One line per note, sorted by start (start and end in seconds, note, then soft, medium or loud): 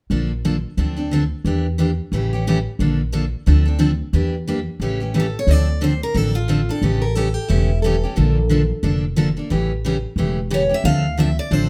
0.10 0.64 A#1 medium
0.10 0.31 D3 medium
0.10 0.31 F3 medium
0.10 0.31 A#3 medium
0.10 0.31 D4 medium
0.10 0.31 A4 medium
0.45 0.55 D3 medium
0.45 0.55 F3 medium
0.45 0.55 A#3 medium
0.45 0.55 D4 medium
0.45 0.55 A4 medium
0.77 1.31 D2 medium
0.77 0.97 D3 medium
0.77 0.97 F3 medium
0.77 0.97 C4 medium
0.77 0.96 D4 medium
0.77 0.95 A4 medium
0.97 1.11 C4 soft
0.97 1.11 D4 soft
0.97 1.10 A4 soft
1.11 1.22 D3 medium
1.11 1.23 F3 medium
1.11 1.23 C4 medium
1.11 1.23 D4 medium
1.11 1.23 A4 medium
1.45 1.99 E2 medium
1.45 1.66 E3 medium
1.45 1.66 A#3 medium
1.45 1.66 D4 medium
1.45 1.66 G4 medium
1.78 1.89 E3 medium
1.78 1.90 A#3 medium
1.78 1.90 D4 medium
1.78 1.90 G4 medium
2.12 2.66 A1 medium
2.12 2.32 C#3 medium
2.12 2.32 E3 medium
2.12 2.32 A3 medium
2.12 2.33 C#4 medium
2.12 2.32 G4 medium
2.33 2.47 A3 soft
2.33 2.46 C#4 soft
2.33 2.46 G4 soft
2.47 2.57 C#3 medium
2.47 2.58 E3 medium
2.47 2.58 A3 medium
2.47 2.58 C#4 medium
2.47 2.58 G4 medium
2.79 3.33 A#1 medium
2.79 3.00 D3 medium
2.79 3.00 F3 medium
2.79 3.00 A#3 medium
2.79 3.00 D4 medium
2.79 3.01 A4 medium
3.12 3.24 D3 medium
3.12 3.24 F3 medium
3.12 3.24 A#3 medium
3.12 3.24 D4 medium
3.12 3.24 A4 medium
3.46 4.01 D2 medium
3.46 3.66 D3 medium
3.46 3.66 F3 medium
3.46 3.66 C4 medium
3.46 3.66 D4 medium
3.46 3.64 A4 medium
3.65 3.78 C4 soft
3.65 3.78 D4 soft
3.65 3.78 A4 soft
3.79 3.90 D3 medium
3.79 3.90 F3 medium
3.79 3.91 C4 medium
3.79 3.91 D4 medium
3.79 3.91 A4 medium
4.13 4.67 E2 medium
4.13 4.34 E3 medium
4.13 4.34 A#3 medium
4.13 4.34 D4 medium
4.13 4.34 G4 medium
4.47 4.58 E3 medium
4.47 4.59 A#3 medium
4.47 4.59 D4 medium
4.47 4.59 G4 medium
4.80 5.34 A1 medium
4.80 5.01 C#3 medium
4.80 5.01 E3 medium
4.80 5.01 A3 medium
4.80 5.00 C#4 medium
4.80 4.99 G4 medium
5.00 5.14 A3 soft
5.00 5.13 C#4 soft
5.00 5.14 G4 soft
5.14 5.25 C#3 medium
5.14 5.25 E3 medium
5.14 5.25 A3 medium
5.14 5.25 C#4 medium
5.14 5.26 G4 medium
5.20 5.38 A4 medium
5.39 5.51 C#5 medium
5.47 6.01 D2 medium
5.47 5.68 D3 medium
5.47 5.68 F3 medium
5.47 5.69 C4 medium
5.47 5.69 D4 medium
5.47 5.69 A4 medium
5.47 5.83 D5 medium
5.81 5.92 D3 medium
5.81 5.92 F3 medium
5.81 5.93 C4 medium
5.81 5.93 D4 medium
5.81 5.93 A4 medium
5.81 6.01 C5 medium
6.03 6.17 A#4 medium
6.14 6.69 A1 medium
6.14 6.35 D3 medium
6.14 6.35 F3 medium
6.14 6.35 C4 medium
6.14 6.36 D4 medium
6.14 6.36 A4 medium
6.14 6.37 A4 medium
6.35 6.70 F4 medium
6.48 6.59 D3 medium
6.48 6.60 F3 medium
6.48 6.60 C4 medium
6.48 6.60 D4 medium
6.48 6.60 A4 medium
6.69 6.83 C4 soft
6.69 6.82 D4 soft
6.69 6.82 A4 soft
6.69 7.14 A4 medium
6.82 7.36 A1 medium
6.82 7.03 C#3 medium
6.82 7.03 E3 medium
6.82 7.03 A3 medium
6.82 7.03 C#4 medium
6.82 7.03 G4 medium
7.02 7.15 A#4 medium
7.15 7.27 C#3 medium
7.15 7.27 E3 medium
7.15 7.27 A3 medium
7.15 7.27 C#4 medium
7.15 7.27 G4 medium
7.15 7.34 A4 medium
7.34 7.48 G4 medium
7.48 8.03 E1 medium
7.48 7.70 C#3 medium
7.48 7.70 E3 medium
7.48 7.70 A3 medium
7.48 7.70 C#4 medium
7.48 7.82 E4 medium
7.48 7.70 G4 medium
7.82 7.94 C#3 medium
7.82 7.94 E3 medium
7.82 7.95 A3 medium
7.82 7.95 C#4 medium
7.82 7.95 G4 medium
7.82 8.46 A4 medium
8.03 8.16 A3 soft
8.03 8.16 C#4 soft
8.03 8.16 G4 soft
8.16 8.71 A#1 medium
8.16 8.36 D3 medium
8.16 8.37 F3 medium
8.16 8.37 A#3 medium
8.16 8.37 D4 medium
8.16 8.37 A4 medium
8.49 8.61 D3 medium
8.49 8.61 F3 medium
8.49 8.61 A#3 medium
8.49 8.62 D4 medium
8.49 8.62 A4 medium
8.83 9.37 F1 medium
8.83 9.03 D3 medium
8.83 9.04 F3 medium
8.83 9.04 A#3 medium
8.83 9.04 D4 medium
8.83 9.04 A4 medium
9.16 9.28 D3 medium
9.16 9.28 F3 medium
9.16 9.28 A#3 medium
9.16 9.28 D4 medium
9.16 9.28 A4 medium
9.37 9.50 A#3 soft
9.37 9.50 D4 soft
9.37 9.50 A4 soft
9.50 10.04 A1 medium
9.50 9.71 C#3 medium
9.50 9.71 E3 medium
9.50 9.71 A3 medium
9.50 9.71 C#4 medium
9.50 9.71 G4 medium
9.85 9.95 C#3 medium
9.85 9.96 E3 medium
9.85 9.96 A3 medium
9.85 9.96 C#4 medium
9.85 9.96 G4 medium
10.16 10.70 E1 medium
10.16 10.38 C#3 medium
10.16 10.38 E3 medium
10.16 10.38 A3 medium
10.16 10.38 C#4 medium
10.16 10.39 G4 medium
10.51 10.62 C#3 medium
10.51 10.62 E3 medium
10.51 10.62 A3 medium
10.51 10.62 C#4 medium
10.51 10.62 G4 medium
10.51 10.73 C#5 medium
10.69 10.84 A3 soft
10.69 10.84 C#4 soft
10.69 10.83 G4 soft
10.74 10.85 E5 medium
10.84 11.38 D2 medium
10.84 11.05 D3 medium
10.84 11.05 F3 medium
10.84 11.05 C4 medium
10.84 11.06 D4 medium
10.84 11.06 A4 medium
10.84 11.20 F5 loud
11.18 11.29 D3 medium
11.18 11.29 F3 medium
11.18 11.29 C4 medium
11.18 11.29 D4 medium
11.18 11.30 A4 medium
11.18 11.39 E5 medium
11.39 11.53 D5 medium
11.51 11.69 A1 medium
11.51 11.69 D3 medium
11.51 11.69 F3 medium
11.51 11.69 C4 medium
11.51 11.69 D4 medium
11.51 11.69 A4 medium
11.51 11.69 C5 medium